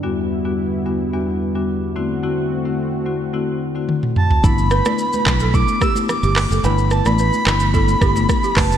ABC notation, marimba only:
X:1
M:4/4
L:1/16
Q:1/4=109
K:G
V:1 name="Marimba"
[E,,G,B,DF]3 [E,,G,B,DF] z2 [E,,G,B,DF]2 [E,,G,B,DF]2 z [E,,G,B,DF] z2 [D,A,CEF]2 | [D,A,CEF]3 [D,A,CEF] z2 [D,A,CEF]2 [D,A,CEF]2 z [D,A,CEF] z4 | [A,B,DE]3 [A,B,DE] z2 [A,B,DE]2 [A,B,DE]2 z [A,B,DE] z4 | [A,B,DE]3 [A,B,DE] z2 [A,B,DE]2 [A,B,DE]2 z [A,B,DE] z4 |]